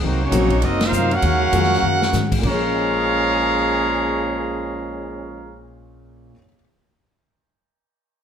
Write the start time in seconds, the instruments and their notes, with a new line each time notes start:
0.02 upright bass C2, steel-string acoustic guitar C3 F#3 A#3 D#4, trombone section D#3 F#3 C4, trumpet section A#3 D#4 F#4 C5, kick
0.21 trombone section F#3 A#3 C#4, trumpet section A#3 D#4 F#4 C#5
0.31 upright bass A#1, steel-string acoustic guitar C3 F#3 A#3 D#4, grand piano F#3 A#3 C4 D#4 F#4, kick, hi-hat pedal, ride
0.50 kick, ride
0.62 upright bass F#1, steel-string acoustic guitar C3 F#3 A#3 D#4, trombone section F#3 A#3 D#4, trumpet section C4 F#4 A#4 D#5, kick, ride
0.81 trombone section F#3 A#3 F4, trumpet section D#4 A#4 C5 F5, snare, ride
0.92 upright bass F#2, steel-string acoustic guitar C3 F#3 A#3 D#4, hi-hat pedal
1.11 trombone section A#3 C#4 F#4, trumpet section C#4 A#4 F5 F#5, ride
1.22 upright bass D#2, steel-string acoustic guitar D#3 G#3 C#4 F#4, kick, ride
1.52 upright bass F2, steel-string acoustic guitar D#3 G#3 C#4 F#4, grand piano F#3 A#3 C#4 F4 G#4, kick, hi-hat pedal, ride
1.63 snare
1.73 snare
1.82 upright bass F#2, steel-string acoustic guitar D#3 G#3 C#4 F#4
2.02 snare
2.13 upright bass G#2, steel-string acoustic guitar D#3 G#3 C#4 F#4, snare, hi-hat pedal
2.32 kick, crash
2.38 grand piano A#2 A#3, steel-string acoustic guitar A#3
2.43 upright bass A#1, trombone section A#2 F3 G#3 C#4, grand piano C#4, steel-string acoustic guitar C#4, trumpet section G#4 C#5 F5 A#5, kick, crash
2.47 grand piano G#4 C#5
2.53 steel-string acoustic guitar G#4
2.74 grand piano D#5
2.82 grand piano G#5
2.90 grand piano C6
2.99 grand piano D#6
3.09 grand piano G#6
3.20 grand piano C7
3.32 grand piano D#7